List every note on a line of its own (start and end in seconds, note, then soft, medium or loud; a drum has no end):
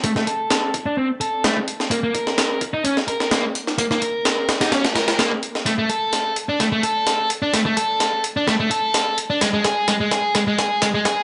0.04 0.10 A3 medium
0.04 kick loud
0.04 closed hi-hat medium
0.16 0.26 A3 medium
0.16 snare soft
0.27 0.73 A4 medium
0.27 closed hi-hat medium
0.50 snare loud
0.50 closed hi-hat medium
0.74 kick medium
0.74 closed hi-hat medium
0.86 0.96 D4 medium
0.97 1.08 C4 medium
1.21 1.43 A4 medium
1.21 closed hi-hat medium
1.44 1.56 A3 medium
1.44 snare loud
1.44 closed hi-hat medium
1.57 kick medium
1.68 closed hi-hat medium
1.80 snare soft
1.91 1.97 A#3 medium
1.91 kick loud
1.91 closed hi-hat medium
2.03 2.13 A#3 medium
2.14 2.60 A#4 medium
2.14 kick medium
2.14 closed hi-hat medium
2.27 snare soft
2.38 snare loud
2.38 closed hi-hat medium
2.61 kick medium
2.61 closed hi-hat medium
2.74 2.83 D#4 loud
2.84 2.95 C#4 medium
2.84 closed hi-hat medium
2.97 snare soft
3.08 3.31 A#4 medium
3.08 closed hi-hat medium
3.20 snare medium
3.31 3.44 A#3 medium
3.31 snare loud
3.31 closed hi-hat medium
3.55 closed hi-hat medium
3.67 snare soft
3.78 3.85 A#3 medium
3.78 kick loud
3.78 closed hi-hat medium
3.91 4.01 A#3 medium
3.91 snare soft
4.02 4.48 A#4 medium
4.02 closed hi-hat medium
4.25 snare loud
4.25 closed hi-hat medium
4.49 snare loud
4.49 closed hi-hat medium
4.61 4.71 D#4 loud
4.61 snare loud
4.61 closed hi-hat medium
4.72 4.83 C#4 medium
4.72 snare loud
4.72 closed hi-hat medium
4.85 snare loud
4.85 closed hi-hat medium
4.95 5.18 A#4 medium
4.95 snare loud
4.95 closed hi-hat medium
5.08 snare loud
5.08 closed hi-hat medium
5.19 5.31 A#3 medium
5.19 snare loud
5.19 closed hi-hat medium
5.32 kick loud
5.43 closed hi-hat medium
5.55 snare soft
5.66 5.72 A3 medium
5.66 snare soft
5.66 closed hi-hat medium
5.78 5.88 A3 medium
5.89 6.35 A4 medium
5.89 closed hi-hat medium
6.13 snare soft
6.13 closed hi-hat medium
6.36 closed hi-hat medium
6.49 6.58 D4 medium
6.60 6.66 A3 medium
6.60 snare soft
6.60 closed hi-hat medium
6.72 6.82 A3 medium
6.83 7.29 A4 medium
6.83 closed hi-hat medium
7.07 snare medium
7.07 closed hi-hat medium
7.30 closed hi-hat medium
7.42 7.52 D4 medium
7.53 7.60 A3 medium
7.53 snare medium
7.53 closed hi-hat medium
7.66 7.76 A3 medium
7.77 8.23 A4 medium
7.77 closed hi-hat medium
8.00 snare medium
8.00 closed hi-hat medium
8.24 closed hi-hat medium
8.37 8.46 D4 medium
8.48 8.54 A3 medium
8.48 snare medium
8.60 8.70 A3 medium
8.71 9.17 A4 medium
8.71 closed hi-hat medium
8.94 snare medium
8.94 closed hi-hat medium
9.18 closed hi-hat medium
9.30 9.40 D4 loud
9.41 9.48 G#3 medium
9.41 snare medium
9.41 closed hi-hat medium
9.54 9.63 G#3 medium
9.64 9.87 G#4 medium
9.64 snare medium
9.64 closed hi-hat medium
9.88 9.95 G#3 medium
9.88 snare medium
9.88 closed hi-hat medium
10.01 10.10 G#3 medium
10.11 10.33 G#4 medium
10.11 snare medium
10.11 closed hi-hat medium
10.35 10.42 G#3 medium
10.35 snare medium
10.35 closed hi-hat medium
10.47 10.57 G#3 medium
10.58 10.80 G#4 medium
10.58 snare medium
10.58 closed hi-hat medium
10.82 10.89 G#3 medium
10.82 snare medium
10.82 closed hi-hat medium
10.94 11.04 G#3 medium
11.05 11.23 G#4 medium
11.05 snare medium
11.05 closed hi-hat medium